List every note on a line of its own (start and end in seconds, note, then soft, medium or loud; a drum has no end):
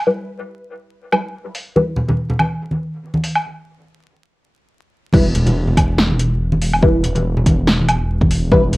0.07 1.10 G3 medium
0.07 1.10 E4 medium
0.07 1.10 B4 medium
1.12 1.21 G3 medium
1.12 1.21 E4 medium
1.12 1.21 B4 medium
1.12 low woodblock medium
1.55 open hi-hat medium
1.76 1.85 G3 medium
1.76 1.85 E4 medium
1.76 1.85 B4 medium
1.76 high conga medium
1.96 low conga medium
2.09 high conga medium
2.09 low conga medium
2.30 low conga medium
2.39 high conga medium
2.39 low woodblock medium
2.71 high conga medium
3.14 high conga medium
3.24 open hi-hat medium
3.35 low woodblock medium
5.13 5.76 E1 medium
5.13 5.23 G3 medium
5.13 5.23 E4 medium
5.13 5.23 B4 medium
5.13 kick loud
5.13 crash loud
5.13 high conga medium
5.35 closed hi-hat medium
5.35 low conga medium
5.46 closed hi-hat soft
5.46 high conga medium
5.46 low conga medium
5.68 low conga medium
5.77 6.60 E1 medium
5.77 kick medium
5.77 closed hi-hat medium
5.77 high conga medium
5.77 low woodblock medium
5.98 snare loud
6.10 high conga medium
6.19 closed hi-hat medium
6.52 high conga medium
6.62 7.24 E1 medium
6.62 open hi-hat medium
6.73 low woodblock medium
6.82 7.86 G3 medium
6.82 7.86 E4 medium
6.82 7.86 B4 loud
6.82 kick loud
6.82 high conga loud
7.04 closed hi-hat medium
7.04 low conga medium
7.15 closed hi-hat soft
7.15 high conga medium
7.15 low conga medium
7.25 8.50 E1 loud
7.37 low conga medium
7.46 kick medium
7.46 closed hi-hat medium
7.46 high conga loud
7.67 snare loud
7.79 high conga medium
7.88 closed hi-hat medium
7.88 low woodblock medium
8.21 kick medium
8.21 high conga medium
8.31 open hi-hat medium
8.52 8.77 E1 loud
8.52 8.61 G3 medium
8.52 8.61 E4 medium
8.52 8.61 B4 medium
8.52 kick loud
8.52 high conga loud
8.73 closed hi-hat medium
8.73 low conga medium